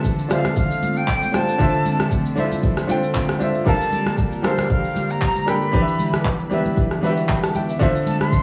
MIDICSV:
0, 0, Header, 1, 5, 480
1, 0, Start_track
1, 0, Key_signature, -1, "minor"
1, 0, Tempo, 517241
1, 1484, Time_signature, 4, 2, 24, 8
1, 7820, End_track
2, 0, Start_track
2, 0, Title_t, "Flute"
2, 0, Program_c, 0, 73
2, 297, Note_on_c, 0, 77, 79
2, 514, Note_off_c, 0, 77, 0
2, 534, Note_on_c, 0, 77, 95
2, 902, Note_on_c, 0, 79, 101
2, 916, Note_off_c, 0, 77, 0
2, 1252, Note_on_c, 0, 81, 108
2, 1266, Note_off_c, 0, 79, 0
2, 1968, Note_off_c, 0, 81, 0
2, 3410, Note_on_c, 0, 81, 121
2, 3854, Note_off_c, 0, 81, 0
2, 4131, Note_on_c, 0, 77, 78
2, 4351, Note_off_c, 0, 77, 0
2, 4373, Note_on_c, 0, 77, 94
2, 4745, Note_on_c, 0, 82, 110
2, 4759, Note_off_c, 0, 77, 0
2, 5093, Note_on_c, 0, 83, 107
2, 5107, Note_off_c, 0, 82, 0
2, 5808, Note_off_c, 0, 83, 0
2, 7491, Note_on_c, 0, 81, 80
2, 7611, Note_off_c, 0, 81, 0
2, 7620, Note_on_c, 0, 84, 102
2, 7820, Note_off_c, 0, 84, 0
2, 7820, End_track
3, 0, Start_track
3, 0, Title_t, "Grand piano"
3, 0, Program_c, 1, 0
3, 0, Control_c, 1, 64, 127
3, 0, Note_on_c, 1, 50, 98
3, 0, Note_on_c, 1, 62, 87
3, 0, Note_on_c, 1, 65, 88
3, 0, Note_on_c, 1, 72, 85
3, 0, Note_on_c, 1, 76, 102
3, 140, Note_off_c, 1, 50, 0
3, 144, Note_off_c, 1, 62, 0
3, 149, Note_off_c, 1, 65, 0
3, 153, Note_off_c, 1, 72, 0
3, 157, Note_off_c, 1, 76, 0
3, 266, Note_on_c, 1, 50, 77
3, 275, Note_on_c, 1, 62, 71
3, 284, Note_on_c, 1, 65, 71
3, 293, Note_on_c, 1, 72, 72
3, 302, Note_on_c, 1, 76, 66
3, 356, Note_off_c, 1, 76, 0
3, 360, Note_on_c, 1, 77, 83
3, 1048, Note_off_c, 1, 50, 0
3, 1052, Note_off_c, 1, 62, 0
3, 1057, Note_off_c, 1, 65, 0
3, 1061, Note_off_c, 1, 72, 0
3, 1095, Note_off_c, 1, 77, 0
3, 1226, Note_on_c, 1, 50, 73
3, 1236, Note_on_c, 1, 62, 66
3, 1245, Note_on_c, 1, 65, 71
3, 1253, Note_on_c, 1, 72, 66
3, 1261, Note_on_c, 1, 79, 83
3, 1432, Note_off_c, 1, 50, 0
3, 1437, Note_off_c, 1, 62, 0
3, 1441, Note_off_c, 1, 65, 0
3, 1445, Note_off_c, 1, 72, 0
3, 1449, Note_off_c, 1, 79, 0
3, 1469, Note_on_c, 1, 50, 96
3, 1478, Note_on_c, 1, 62, 87
3, 1487, Note_on_c, 1, 65, 85
3, 1496, Note_on_c, 1, 72, 89
3, 1505, Note_on_c, 1, 76, 102
3, 2062, Note_off_c, 1, 50, 0
3, 2066, Note_off_c, 1, 62, 0
3, 2071, Note_off_c, 1, 65, 0
3, 2075, Note_off_c, 1, 72, 0
3, 2080, Note_off_c, 1, 76, 0
3, 2188, Note_on_c, 1, 50, 91
3, 2196, Note_on_c, 1, 62, 82
3, 2206, Note_on_c, 1, 64, 67
3, 2215, Note_on_c, 1, 72, 84
3, 2224, Note_on_c, 1, 76, 104
3, 2263, Note_on_c, 1, 65, 80
3, 2268, Note_off_c, 1, 64, 0
3, 2589, Note_off_c, 1, 50, 0
3, 2593, Note_off_c, 1, 62, 0
3, 2603, Note_off_c, 1, 72, 0
3, 2607, Note_off_c, 1, 76, 0
3, 2627, Note_off_c, 1, 65, 0
3, 2665, Note_on_c, 1, 50, 90
3, 2674, Note_on_c, 1, 62, 85
3, 2683, Note_on_c, 1, 65, 84
3, 2692, Note_on_c, 1, 72, 84
3, 2700, Note_on_c, 1, 79, 100
3, 3068, Note_off_c, 1, 50, 0
3, 3072, Note_off_c, 1, 62, 0
3, 3077, Note_off_c, 1, 65, 0
3, 3081, Note_off_c, 1, 72, 0
3, 3086, Note_off_c, 1, 79, 0
3, 3145, Note_on_c, 1, 50, 82
3, 3154, Note_on_c, 1, 62, 76
3, 3164, Note_on_c, 1, 65, 75
3, 3172, Note_on_c, 1, 72, 73
3, 3181, Note_on_c, 1, 76, 89
3, 3351, Note_off_c, 1, 50, 0
3, 3356, Note_off_c, 1, 62, 0
3, 3361, Note_off_c, 1, 65, 0
3, 3365, Note_off_c, 1, 72, 0
3, 3369, Note_off_c, 1, 76, 0
3, 3384, Note_on_c, 1, 55, 93
3, 3394, Note_on_c, 1, 62, 88
3, 3404, Note_on_c, 1, 69, 86
3, 3410, Note_on_c, 1, 70, 90
3, 3415, Control_c, 1, 64, 0
3, 3420, Note_on_c, 1, 77, 104
3, 3559, Control_c, 1, 64, 127
3, 3980, Note_off_c, 1, 55, 0
3, 3984, Note_off_c, 1, 62, 0
3, 3989, Note_off_c, 1, 69, 0
3, 3992, Note_off_c, 1, 70, 0
3, 3998, Note_off_c, 1, 77, 0
3, 4106, Note_on_c, 1, 55, 79
3, 4115, Note_on_c, 1, 62, 75
3, 4124, Note_on_c, 1, 69, 74
3, 4134, Note_on_c, 1, 70, 72
3, 4142, Note_on_c, 1, 72, 84
3, 4888, Note_off_c, 1, 55, 0
3, 4892, Note_off_c, 1, 62, 0
3, 4897, Note_off_c, 1, 69, 0
3, 4902, Note_off_c, 1, 70, 0
3, 4906, Note_off_c, 1, 72, 0
3, 5066, Note_on_c, 1, 55, 72
3, 5076, Note_on_c, 1, 62, 66
3, 5085, Note_on_c, 1, 69, 69
3, 5093, Note_on_c, 1, 70, 71
3, 5102, Note_on_c, 1, 79, 82
3, 5272, Note_off_c, 1, 55, 0
3, 5277, Note_off_c, 1, 62, 0
3, 5281, Note_off_c, 1, 69, 0
3, 5285, Note_off_c, 1, 70, 0
3, 5290, Note_off_c, 1, 79, 0
3, 5306, Note_on_c, 1, 52, 95
3, 5316, Note_on_c, 1, 62, 86
3, 5324, Note_on_c, 1, 67, 91
3, 5331, Note_on_c, 1, 71, 91
3, 5335, Control_c, 1, 64, 0
3, 5341, Note_on_c, 1, 74, 85
3, 5396, Note_off_c, 1, 74, 0
3, 5399, Note_on_c, 1, 76, 105
3, 5507, Control_c, 1, 64, 127
3, 5901, Note_off_c, 1, 52, 0
3, 5905, Note_off_c, 1, 62, 0
3, 5910, Note_off_c, 1, 67, 0
3, 5913, Note_off_c, 1, 71, 0
3, 5947, Note_off_c, 1, 76, 0
3, 6029, Note_on_c, 1, 52, 89
3, 6038, Note_on_c, 1, 62, 85
3, 6046, Note_on_c, 1, 67, 84
3, 6057, Note_on_c, 1, 71, 81
3, 6066, Note_on_c, 1, 76, 102
3, 6430, Note_off_c, 1, 52, 0
3, 6434, Note_off_c, 1, 62, 0
3, 6439, Note_off_c, 1, 67, 0
3, 6444, Note_off_c, 1, 71, 0
3, 6448, Note_off_c, 1, 76, 0
3, 6508, Note_on_c, 1, 52, 92
3, 6517, Note_on_c, 1, 62, 78
3, 6525, Note_on_c, 1, 66, 67
3, 6534, Note_on_c, 1, 71, 82
3, 6544, Note_on_c, 1, 76, 98
3, 6583, Note_on_c, 1, 67, 84
3, 6588, Note_off_c, 1, 66, 0
3, 6767, Note_on_c, 1, 83, 62
3, 6774, Note_off_c, 1, 76, 0
3, 6774, Note_on_c, 1, 79, 55
3, 6891, Note_off_c, 1, 83, 0
3, 6894, Note_off_c, 1, 79, 0
3, 6898, Note_on_c, 1, 81, 71
3, 6910, Note_off_c, 1, 52, 0
3, 6914, Note_off_c, 1, 62, 0
3, 6923, Note_off_c, 1, 71, 0
3, 6947, Note_off_c, 1, 67, 0
3, 7000, Note_off_c, 1, 81, 0
3, 7009, Note_on_c, 1, 79, 71
3, 7016, Note_on_c, 1, 76, 59
3, 7130, Note_off_c, 1, 76, 0
3, 7132, Note_off_c, 1, 79, 0
3, 7144, Note_on_c, 1, 76, 62
3, 7228, Note_on_c, 1, 50, 113
3, 7238, Note_on_c, 1, 62, 106
3, 7247, Note_on_c, 1, 65, 101
3, 7250, Note_off_c, 1, 76, 0
3, 7255, Control_c, 1, 64, 0
3, 7255, Note_on_c, 1, 72, 102
3, 7264, Note_on_c, 1, 76, 127
3, 7426, Control_c, 1, 64, 127
3, 7820, Note_off_c, 1, 50, 0
3, 7820, Note_off_c, 1, 62, 0
3, 7820, Note_off_c, 1, 65, 0
3, 7820, Note_off_c, 1, 72, 0
3, 7820, Note_off_c, 1, 76, 0
3, 7820, End_track
4, 0, Start_track
4, 0, Title_t, "Analog synth pad"
4, 0, Program_c, 2, 89
4, 0, Note_on_c, 2, 50, 76
4, 0, Note_on_c, 2, 57, 73
4, 0, Note_on_c, 2, 60, 69
4, 0, Note_on_c, 2, 65, 71
4, 0, Note_on_c, 2, 69, 88
4, 3367, Note_off_c, 2, 57, 0
4, 3367, Note_off_c, 2, 60, 0
4, 3367, Note_off_c, 2, 69, 0
4, 3402, Note_on_c, 2, 58, 71
4, 3402, Note_on_c, 2, 67, 88
4, 3403, Note_on_c, 2, 55, 75
4, 5287, Note_off_c, 2, 65, 0
4, 5304, Note_off_c, 2, 55, 0
4, 5304, Note_off_c, 2, 58, 0
4, 5304, Note_off_c, 2, 67, 0
4, 5318, Note_on_c, 2, 59, 73
4, 5320, Note_on_c, 2, 71, 85
4, 5321, Note_on_c, 2, 55, 71
4, 5321, Note_on_c, 2, 64, 71
4, 7206, Note_off_c, 2, 50, 0
4, 7222, Note_off_c, 2, 59, 0
4, 7223, Note_off_c, 2, 55, 0
4, 7223, Note_off_c, 2, 64, 0
4, 7223, Note_off_c, 2, 71, 0
4, 7239, Note_on_c, 2, 50, 82
4, 7240, Note_on_c, 2, 57, 71
4, 7240, Note_on_c, 2, 60, 68
4, 7240, Note_on_c, 2, 81, 82
4, 7241, Note_on_c, 2, 65, 72
4, 7820, Note_off_c, 2, 50, 0
4, 7820, Note_off_c, 2, 57, 0
4, 7820, Note_off_c, 2, 60, 0
4, 7820, Note_off_c, 2, 65, 0
4, 7820, Note_off_c, 2, 81, 0
4, 7820, End_track
5, 0, Start_track
5, 0, Title_t, "Drums"
5, 42, Note_on_c, 9, 82, 67
5, 43, Note_on_c, 9, 36, 87
5, 52, Note_on_c, 9, 64, 67
5, 135, Note_off_c, 9, 36, 0
5, 135, Note_off_c, 9, 82, 0
5, 145, Note_off_c, 9, 64, 0
5, 176, Note_on_c, 9, 82, 50
5, 269, Note_off_c, 9, 82, 0
5, 283, Note_on_c, 9, 63, 68
5, 283, Note_on_c, 9, 82, 83
5, 286, Note_on_c, 9, 37, 96
5, 375, Note_off_c, 9, 82, 0
5, 376, Note_off_c, 9, 63, 0
5, 378, Note_off_c, 9, 37, 0
5, 412, Note_on_c, 9, 82, 54
5, 415, Note_on_c, 9, 37, 93
5, 421, Note_on_c, 9, 63, 79
5, 505, Note_off_c, 9, 82, 0
5, 508, Note_off_c, 9, 37, 0
5, 513, Note_off_c, 9, 63, 0
5, 521, Note_on_c, 9, 82, 74
5, 524, Note_on_c, 9, 36, 107
5, 530, Note_on_c, 9, 64, 76
5, 614, Note_off_c, 9, 82, 0
5, 617, Note_off_c, 9, 36, 0
5, 622, Note_off_c, 9, 64, 0
5, 657, Note_on_c, 9, 82, 58
5, 750, Note_off_c, 9, 82, 0
5, 763, Note_on_c, 9, 82, 88
5, 766, Note_on_c, 9, 63, 76
5, 855, Note_off_c, 9, 82, 0
5, 858, Note_off_c, 9, 63, 0
5, 890, Note_on_c, 9, 82, 44
5, 983, Note_off_c, 9, 82, 0
5, 1003, Note_on_c, 9, 39, 90
5, 1005, Note_on_c, 9, 36, 86
5, 1007, Note_on_c, 9, 82, 79
5, 1096, Note_off_c, 9, 39, 0
5, 1098, Note_off_c, 9, 36, 0
5, 1100, Note_off_c, 9, 82, 0
5, 1132, Note_on_c, 9, 82, 56
5, 1141, Note_on_c, 9, 63, 46
5, 1225, Note_off_c, 9, 82, 0
5, 1233, Note_off_c, 9, 63, 0
5, 1244, Note_on_c, 9, 82, 75
5, 1245, Note_on_c, 9, 37, 94
5, 1246, Note_on_c, 9, 63, 77
5, 1337, Note_off_c, 9, 82, 0
5, 1338, Note_off_c, 9, 37, 0
5, 1339, Note_off_c, 9, 63, 0
5, 1374, Note_on_c, 9, 82, 52
5, 1467, Note_off_c, 9, 82, 0
5, 1482, Note_on_c, 9, 82, 64
5, 1483, Note_on_c, 9, 36, 109
5, 1489, Note_on_c, 9, 64, 64
5, 1575, Note_off_c, 9, 82, 0
5, 1576, Note_off_c, 9, 36, 0
5, 1581, Note_off_c, 9, 64, 0
5, 1618, Note_on_c, 9, 82, 49
5, 1711, Note_off_c, 9, 82, 0
5, 1722, Note_on_c, 9, 63, 75
5, 1723, Note_on_c, 9, 82, 98
5, 1814, Note_off_c, 9, 63, 0
5, 1816, Note_off_c, 9, 82, 0
5, 1853, Note_on_c, 9, 63, 81
5, 1857, Note_on_c, 9, 37, 90
5, 1858, Note_on_c, 9, 82, 52
5, 1946, Note_off_c, 9, 63, 0
5, 1950, Note_off_c, 9, 37, 0
5, 1950, Note_off_c, 9, 82, 0
5, 1962, Note_on_c, 9, 36, 85
5, 1963, Note_on_c, 9, 82, 68
5, 1969, Note_on_c, 9, 64, 67
5, 2055, Note_off_c, 9, 36, 0
5, 2056, Note_off_c, 9, 82, 0
5, 2062, Note_off_c, 9, 64, 0
5, 2096, Note_on_c, 9, 82, 50
5, 2189, Note_off_c, 9, 82, 0
5, 2203, Note_on_c, 9, 63, 74
5, 2204, Note_on_c, 9, 82, 83
5, 2296, Note_off_c, 9, 63, 0
5, 2296, Note_off_c, 9, 82, 0
5, 2333, Note_on_c, 9, 82, 58
5, 2337, Note_on_c, 9, 63, 81
5, 2426, Note_off_c, 9, 82, 0
5, 2429, Note_off_c, 9, 63, 0
5, 2441, Note_on_c, 9, 82, 72
5, 2443, Note_on_c, 9, 36, 103
5, 2446, Note_on_c, 9, 64, 75
5, 2534, Note_off_c, 9, 82, 0
5, 2536, Note_off_c, 9, 36, 0
5, 2539, Note_off_c, 9, 64, 0
5, 2571, Note_on_c, 9, 37, 79
5, 2578, Note_on_c, 9, 82, 55
5, 2664, Note_off_c, 9, 37, 0
5, 2670, Note_off_c, 9, 82, 0
5, 2681, Note_on_c, 9, 63, 74
5, 2683, Note_on_c, 9, 82, 91
5, 2774, Note_off_c, 9, 63, 0
5, 2775, Note_off_c, 9, 82, 0
5, 2811, Note_on_c, 9, 82, 45
5, 2904, Note_off_c, 9, 82, 0
5, 2922, Note_on_c, 9, 39, 92
5, 2923, Note_on_c, 9, 36, 82
5, 2926, Note_on_c, 9, 82, 82
5, 3015, Note_off_c, 9, 39, 0
5, 3016, Note_off_c, 9, 36, 0
5, 3019, Note_off_c, 9, 82, 0
5, 3051, Note_on_c, 9, 82, 54
5, 3053, Note_on_c, 9, 37, 94
5, 3058, Note_on_c, 9, 63, 46
5, 3144, Note_off_c, 9, 82, 0
5, 3146, Note_off_c, 9, 37, 0
5, 3151, Note_off_c, 9, 63, 0
5, 3160, Note_on_c, 9, 82, 73
5, 3164, Note_on_c, 9, 63, 75
5, 3253, Note_off_c, 9, 82, 0
5, 3257, Note_off_c, 9, 63, 0
5, 3292, Note_on_c, 9, 82, 50
5, 3385, Note_off_c, 9, 82, 0
5, 3400, Note_on_c, 9, 82, 64
5, 3402, Note_on_c, 9, 36, 112
5, 3407, Note_on_c, 9, 64, 67
5, 3492, Note_off_c, 9, 82, 0
5, 3495, Note_off_c, 9, 36, 0
5, 3499, Note_off_c, 9, 64, 0
5, 3536, Note_on_c, 9, 82, 48
5, 3628, Note_off_c, 9, 82, 0
5, 3641, Note_on_c, 9, 82, 98
5, 3642, Note_on_c, 9, 63, 75
5, 3734, Note_off_c, 9, 82, 0
5, 3735, Note_off_c, 9, 63, 0
5, 3772, Note_on_c, 9, 63, 82
5, 3774, Note_on_c, 9, 37, 88
5, 3775, Note_on_c, 9, 82, 52
5, 3865, Note_off_c, 9, 63, 0
5, 3867, Note_off_c, 9, 37, 0
5, 3867, Note_off_c, 9, 82, 0
5, 3881, Note_on_c, 9, 36, 85
5, 3881, Note_on_c, 9, 82, 69
5, 3886, Note_on_c, 9, 64, 69
5, 3974, Note_off_c, 9, 36, 0
5, 3974, Note_off_c, 9, 82, 0
5, 3979, Note_off_c, 9, 64, 0
5, 4015, Note_on_c, 9, 82, 50
5, 4107, Note_off_c, 9, 82, 0
5, 4118, Note_on_c, 9, 63, 73
5, 4122, Note_on_c, 9, 82, 89
5, 4125, Note_on_c, 9, 37, 95
5, 4211, Note_off_c, 9, 63, 0
5, 4215, Note_off_c, 9, 82, 0
5, 4218, Note_off_c, 9, 37, 0
5, 4253, Note_on_c, 9, 63, 81
5, 4253, Note_on_c, 9, 82, 58
5, 4256, Note_on_c, 9, 37, 93
5, 4345, Note_off_c, 9, 63, 0
5, 4346, Note_off_c, 9, 82, 0
5, 4349, Note_off_c, 9, 37, 0
5, 4361, Note_on_c, 9, 82, 71
5, 4363, Note_on_c, 9, 36, 108
5, 4364, Note_on_c, 9, 64, 76
5, 4454, Note_off_c, 9, 82, 0
5, 4456, Note_off_c, 9, 36, 0
5, 4457, Note_off_c, 9, 64, 0
5, 4497, Note_on_c, 9, 82, 57
5, 4590, Note_off_c, 9, 82, 0
5, 4601, Note_on_c, 9, 82, 96
5, 4602, Note_on_c, 9, 63, 77
5, 4694, Note_off_c, 9, 82, 0
5, 4695, Note_off_c, 9, 63, 0
5, 4731, Note_on_c, 9, 82, 43
5, 4824, Note_off_c, 9, 82, 0
5, 4843, Note_on_c, 9, 39, 90
5, 4844, Note_on_c, 9, 36, 85
5, 4846, Note_on_c, 9, 82, 83
5, 4936, Note_off_c, 9, 39, 0
5, 4937, Note_off_c, 9, 36, 0
5, 4939, Note_off_c, 9, 82, 0
5, 4972, Note_on_c, 9, 82, 57
5, 4976, Note_on_c, 9, 63, 47
5, 5065, Note_off_c, 9, 82, 0
5, 5069, Note_off_c, 9, 63, 0
5, 5082, Note_on_c, 9, 63, 77
5, 5082, Note_on_c, 9, 82, 73
5, 5083, Note_on_c, 9, 37, 93
5, 5175, Note_off_c, 9, 63, 0
5, 5175, Note_off_c, 9, 82, 0
5, 5176, Note_off_c, 9, 37, 0
5, 5213, Note_on_c, 9, 82, 51
5, 5306, Note_off_c, 9, 82, 0
5, 5322, Note_on_c, 9, 82, 65
5, 5323, Note_on_c, 9, 36, 109
5, 5325, Note_on_c, 9, 64, 65
5, 5415, Note_off_c, 9, 36, 0
5, 5415, Note_off_c, 9, 82, 0
5, 5418, Note_off_c, 9, 64, 0
5, 5457, Note_on_c, 9, 82, 49
5, 5550, Note_off_c, 9, 82, 0
5, 5562, Note_on_c, 9, 63, 72
5, 5562, Note_on_c, 9, 82, 95
5, 5655, Note_off_c, 9, 63, 0
5, 5655, Note_off_c, 9, 82, 0
5, 5692, Note_on_c, 9, 63, 78
5, 5696, Note_on_c, 9, 37, 91
5, 5697, Note_on_c, 9, 82, 53
5, 5785, Note_off_c, 9, 63, 0
5, 5789, Note_off_c, 9, 37, 0
5, 5789, Note_off_c, 9, 82, 0
5, 5802, Note_on_c, 9, 36, 88
5, 5804, Note_on_c, 9, 82, 69
5, 5806, Note_on_c, 9, 64, 69
5, 5807, Note_on_c, 9, 39, 99
5, 5895, Note_off_c, 9, 36, 0
5, 5897, Note_off_c, 9, 82, 0
5, 5899, Note_off_c, 9, 39, 0
5, 5899, Note_off_c, 9, 64, 0
5, 5936, Note_on_c, 9, 82, 51
5, 6029, Note_off_c, 9, 82, 0
5, 6038, Note_on_c, 9, 63, 75
5, 6045, Note_on_c, 9, 82, 86
5, 6131, Note_off_c, 9, 63, 0
5, 6138, Note_off_c, 9, 82, 0
5, 6174, Note_on_c, 9, 63, 81
5, 6175, Note_on_c, 9, 82, 58
5, 6267, Note_off_c, 9, 63, 0
5, 6267, Note_off_c, 9, 82, 0
5, 6284, Note_on_c, 9, 36, 107
5, 6284, Note_on_c, 9, 82, 75
5, 6286, Note_on_c, 9, 64, 77
5, 6376, Note_off_c, 9, 82, 0
5, 6377, Note_off_c, 9, 36, 0
5, 6379, Note_off_c, 9, 64, 0
5, 6412, Note_on_c, 9, 37, 83
5, 6419, Note_on_c, 9, 82, 54
5, 6505, Note_off_c, 9, 37, 0
5, 6512, Note_off_c, 9, 82, 0
5, 6522, Note_on_c, 9, 63, 73
5, 6524, Note_on_c, 9, 82, 93
5, 6615, Note_off_c, 9, 63, 0
5, 6617, Note_off_c, 9, 82, 0
5, 6652, Note_on_c, 9, 82, 42
5, 6744, Note_off_c, 9, 82, 0
5, 6764, Note_on_c, 9, 39, 90
5, 6765, Note_on_c, 9, 36, 86
5, 6768, Note_on_c, 9, 82, 80
5, 6857, Note_off_c, 9, 36, 0
5, 6857, Note_off_c, 9, 39, 0
5, 6861, Note_off_c, 9, 82, 0
5, 6895, Note_on_c, 9, 82, 54
5, 6897, Note_on_c, 9, 63, 44
5, 6898, Note_on_c, 9, 37, 95
5, 6988, Note_off_c, 9, 82, 0
5, 6990, Note_off_c, 9, 37, 0
5, 6990, Note_off_c, 9, 63, 0
5, 7005, Note_on_c, 9, 82, 75
5, 7007, Note_on_c, 9, 63, 77
5, 7098, Note_off_c, 9, 82, 0
5, 7100, Note_off_c, 9, 63, 0
5, 7134, Note_on_c, 9, 82, 51
5, 7227, Note_off_c, 9, 82, 0
5, 7242, Note_on_c, 9, 82, 62
5, 7244, Note_on_c, 9, 36, 115
5, 7248, Note_on_c, 9, 64, 62
5, 7335, Note_off_c, 9, 82, 0
5, 7336, Note_off_c, 9, 36, 0
5, 7341, Note_off_c, 9, 64, 0
5, 7378, Note_on_c, 9, 82, 52
5, 7471, Note_off_c, 9, 82, 0
5, 7482, Note_on_c, 9, 82, 96
5, 7483, Note_on_c, 9, 63, 73
5, 7575, Note_off_c, 9, 82, 0
5, 7576, Note_off_c, 9, 63, 0
5, 7614, Note_on_c, 9, 63, 78
5, 7618, Note_on_c, 9, 37, 86
5, 7618, Note_on_c, 9, 82, 52
5, 7707, Note_off_c, 9, 63, 0
5, 7710, Note_off_c, 9, 37, 0
5, 7711, Note_off_c, 9, 82, 0
5, 7724, Note_on_c, 9, 36, 91
5, 7725, Note_on_c, 9, 82, 63
5, 7729, Note_on_c, 9, 64, 71
5, 7816, Note_off_c, 9, 36, 0
5, 7817, Note_off_c, 9, 82, 0
5, 7820, Note_off_c, 9, 64, 0
5, 7820, End_track
0, 0, End_of_file